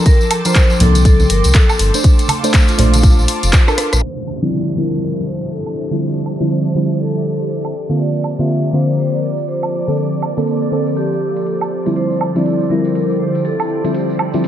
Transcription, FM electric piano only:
Already playing: F3 D4 A#4
0.45 F3 D4 A#4
0.79 F3 A#3 D4
1.94 A3 D4 C5
2.44 A3 D4 C5
2.78 A3 D4 C5
3.67 D4 A4 A#4
4.42 D3 F3 G3 C4 E4
4.76 D3 F3 G3 C4 E4
5.91 D3 F3 G3 C4 E4
6.40 D3 F3 G3 C4 E4
6.74 D3 F3 G3 C4 E4
7.89 D3 A#3 C4 F4
8.39 D3 A#3 C4 F4
8.73 D3 A#3 C4 F4
9.87 D3 A#3 C4 A4
10.37 D3 A#3 C4 A4
10.71 D3 A#3 C4 A4
11.86 D3 F3 G3 C4 E4
12.35 D3 F3 G3 C4 E4
12.70 D3 F3 G3 C4 E4
13.84 D3 F3 G3 C4 E4
14.34 D3 F3 G3 C4 E4

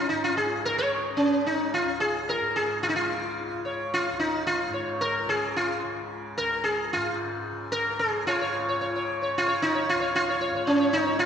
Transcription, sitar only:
0.09 D#4
0.24 F4
0.37 G#4
0.65 A#4
0.78 C#5
1.17 C#4
1.46 D#4
1.74 F4
2.00 G#4
2.29 A#4
2.56 G#4
2.83 F4
2.89 D#4
2.96 F4
3.65 C#5
3.94 F4
4.19 D#4
4.47 F4
4.73 C#5
5.01 A#4
5.29 G#4
5.56 F4
6.38 A#4
6.64 G#4
6.93 F4
7.72 A#4
7.99 G#4
8.27 F4 C#5
8.41 C#5
8.69 C#5
8.81 C#5
8.96 C#5
9.22 C#5
9.38 F4
9.48 C#5
9.62 D#4
9.75 C#5
9.89 F4
10.00 C#5
10.16 F4
10.29 C#5
10.41 C#5
10.55 C#5
10.67 C#4
10.80 C#5
10.93 D#4
11.06 C#5
11.19 F4

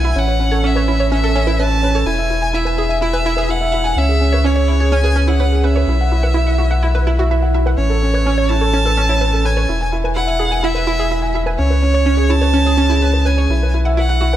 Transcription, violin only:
Already playing: G#5
0.18 F#5
0.66 E5
1.12 E5
1.59 A5
2.06 G#5
2.55 E5
3.03 E5
3.50 F#5
3.98 E5
4.46 C#5
4.93 G#5
5.21 G#5
5.28 F#5
5.64 E5
7.77 C#5
8.49 A5
9.46 G#5
10.15 F#5
10.63 E5
11.58 C#5
12.31 A5
13.26 G#5
13.98 F#5

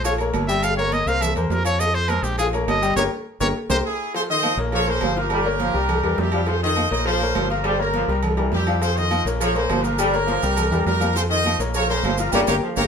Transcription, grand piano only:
0.05 F3 F4 F5
0.20 A#3 A#4 C#5
0.48 G3 G4 G5
0.78 A#3 A#4 C#5
1.07 A#3 A#4 C5
1.36 A#3 A#4 C5
1.65 F3 F4 F5
1.80 F3 F4 F5
2.10 G#3 G#4 C5
2.39 F3 F4 F5
2.53 A#3 A#4 C#5
2.82 G3 G4 G5
2.97 G4 A#4 C#5
3.40 G4 A#4 C#5
3.70 G4 A#4 C5
4.14 F3 F4 F5
4.43 F3 F4 F5
4.57 A#3 A#4 C#5
4.87 A#3 A#4 C#5
5.16 F3 F4 F5
5.45 A#3 A#4 C#5
5.74 G3 G4 A#4
6.04 G3 G4 A#4
6.33 F3 F4 F5
6.48 F3 F4 F5
6.77 F3 F4 F5
6.91 A#3 A#4 C#5
7.21 A#3 A#4 C#5
7.50 F3 F4 F5
7.79 A#3 A#4 C#5
8.08 G3 G4 A#4
8.37 G3 G4 A#4
8.67 F3 F4 F5
8.81 F3 F4 F5
9.11 F3 F4 F5
9.26 A#3 A#4 C#5
9.55 A#3 A#4 C#5
9.84 F3 F4 F5
10.14 A#3 A#4 C#5
10.42 G3 G4 A#4
10.72 G3 G4 A#4
11.00 F3 F4 F5
11.16 F3 F4 F5
11.46 F3 F4 F5
11.60 A#3 A#4 C#5
11.89 A#3 A#4 C#5
12.19 F3 F4 F5
12.34 F4 G4 A#4
12.49 F4 G4 A#4
12.77 F4 G4 A#4

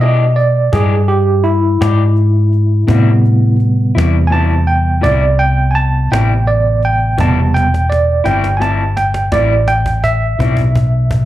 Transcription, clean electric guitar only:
0.02 E3 G#3 D4 G4
0.73 E3 G#3 D4 G4
1.81 G#3 D4 G4
2.88 A2 G3 C4 E4
3.95 G3 C4 E4
4.30 A2 G3 C4 E4
5.01 A2 G3 C4 E4
6.12 G3 C4 E4
7.18 A2 G3 C4 E4
8.24 G3 C4 E4
8.59 A2 G3 C4 E4
9.32 A2 G3 C4 E4
10.40 G3 C4 E4

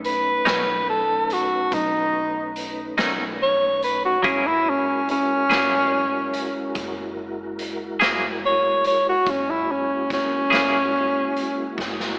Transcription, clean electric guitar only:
0.45 B2 A3 C#4 D#4
2.98 B2 A3 C#4 D#4
4.23 F#3 A#3 E4 G#4
5.50 F#3 A#3 E4 G#4
8.00 F#3 A#3 E4 G#4
10.50 F#3 A#3 E4 G#4

